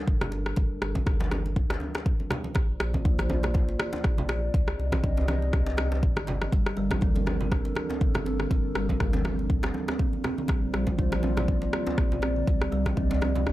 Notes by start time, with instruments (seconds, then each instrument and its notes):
Already playing: analog synth pad G3 D4 A4 A#4
0.07 sub bass G1, kick
0.21 cross-stick, high conga, low conga
0.32 muted conga
0.46 cross-stick
0.56 sub bass G1, kick, muted conga
0.82 sub bass G1, cross-stick, muted conga
0.95 kick, high conga
1.06 kick, cross-stick, djembe bass
1.20 djembe slap, muted conga, high conga
1.31 cross-stick, djembe tone, high conga
1.46 muted conga
1.56 kick, djembe bass
1.70 cross-stick, djembe slap, muted conga
1.80 djembe tone, high conga
1.95 cross-stick, djembe slap, muted conga
2.06 kick
2.20 high conga
2.30 cross-stick, muted conga, djembe tone, low conga
2.44 high conga
2.55 sub bass A#1, analog synth pad A#3 F4 C5 D5, kick, cross-stick, muted conga
2.80 sub bass A#1, cross-stick, muted conga
2.94 kick, djembe tone, high conga
3.05 kick, djembe bass
3.19 cross-stick, muted conga, high conga
3.30 high conga, djembe tone
3.43 cross-stick, muted conga, low conga
3.54 kick, djembe tone
3.69 muted conga
3.80 cross-stick, high conga
3.93 djembe slap, muted conga, djembe tone
4.04 sub bass A#1, kick, cross-stick
4.18 high conga, low conga
4.29 cross-stick, muted conga
4.54 sub bass C2, analog synth pad C4 G4 D#5, kick, muted conga
4.68 cross-stick
4.79 sub bass C2, muted conga
4.92 kick, cross-stick, high conga
5.04 kick, djembe bass
5.17 muted conga, djembe slap, high conga
5.28 cross-stick, djembe tone, high conga
5.42 muted conga
5.53 kick, cross-stick, djembe bass
5.66 djembe slap, muted conga
5.77 cross-stick, djembe tone, high conga
5.92 djembe slap, muted conga
6.03 sub bass G1, kick
6.16 cross-stick, high conga
6.27 muted conga, djembe tone, low conga
6.42 cross-stick, high conga
6.52 sub bass G1, kalimba G3, analog synth pad G3 D4 A4 A#4, kick, muted conga
6.66 cross-stick
6.77 sub bass G1, kalimba G3, muted conga
6.91 kalimba F3, kick, cross-stick, high conga, djembe tone
7.01 kalimba A#3, kick, djembe bass
7.15 muted conga, high conga
7.26 kalimba C4, cross-stick, high conga, djembe tone
7.41 muted conga, low conga
7.52 kick, cross-stick, djembe tone
7.65 muted conga
7.75 cross-stick, high conga
7.89 kalimba C4, djembe slap, muted conga, djembe tone
8.01 sub bass G1, kalimba A#3, kick
8.15 cross-stick, high conga, low conga
8.26 kalimba C4, muted conga
8.40 kalimba D3, cross-stick
8.51 sub bass G1, kalimba G3, kick, muted conga
8.75 sub bass G1, kalimba G3, cross-stick, muted conga
8.89 kalimba F3, kick, high conga
9.00 kalimba A#3, kick, cross-stick, djembe bass
9.13 djembe slap, muted conga, high conga
9.25 kalimba C4, cross-stick, high conga, djembe tone
9.39 muted conga
9.50 kick, djembe bass
9.63 cross-stick, djembe slap, muted conga
9.74 high conga, djembe tone
9.88 kalimba C4, cross-stick, djembe slap, muted conga
9.99 kalimba A#3, kick
10.13 high conga
10.24 kalimba C4, cross-stick, muted conga, djembe tone, low conga
10.38 kalimba D3, high conga
10.48 sub bass A#1, kalimba G3, analog synth pad A#3 F4 C5 D5, kick, cross-stick, muted conga
10.74 sub bass A#1, kalimba G3, cross-stick, muted conga
10.87 kalimba F3, kick, high conga, djembe tone
10.98 kalimba A#3, kick, djembe bass
11.12 cross-stick, muted conga, high conga
11.23 kalimba C4, high conga, djembe tone
11.37 cross-stick, muted conga, low conga
11.48 kick, djembe tone
11.62 muted conga
11.73 cross-stick, high conga
11.86 kalimba C4, muted conga, djembe slap, djembe tone
11.98 sub bass A#1, kalimba A#3, kick, cross-stick
12.12 high conga, low conga
12.22 kalimba C4, cross-stick, muted conga
12.36 kalimba D3
12.47 sub bass C2, kalimba G3, analog synth pad C4 G4 D#5, kick, muted conga
12.62 cross-stick
12.72 sub bass C2, kalimba G3, muted conga
12.86 kalimba F3, kick, cross-stick, djembe tone, high conga
12.97 kalimba A#3, kick, djembe bass
13.11 muted conga, djembe slap, high conga
13.21 kalimba C4, cross-stick, djembe tone, high conga
13.36 muted conga, low conga
13.46 sub bass G1, cross-stick, djembe bass